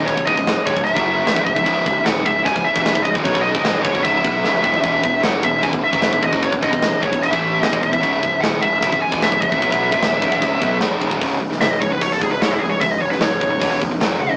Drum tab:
CC |x---x---x---x---|x---x---x---x---|x---x---x-------|x---x---x---x---|
HH |----------------|----------------|----------------|----------------|
SD |----o-------o---|----o-------o---|----o-------o---|----o-------o---|
FT |----------------|----------------|---------------o|----------------|
BD |oooo--oo-o---ooo|o-o---o-oo-o-ooo|oo-o--ooo-o---o-|o-o---o-oo-o-ooo|

CC |x---x---x---x---|x---x---x---x---|x---x---x---x---|----------------|
HH |----------------|----------------|----------------|o---o---o---o---|
SD |----o-------o---|----o-------o---|----o-------o---|---oo----o--o---|
FT |----------------|----------------|----------------|----------------|
BD |oooo--oo-o---ooo|o-o---o-oo-o-ooo|oo-o--ooo-o---oo|o-----o-o-o-----|

CC |----------------|
HH |o---o---o---o---|
SD |---oo-------o---|
FT |----------------|
BD |o-----o-o-o-----|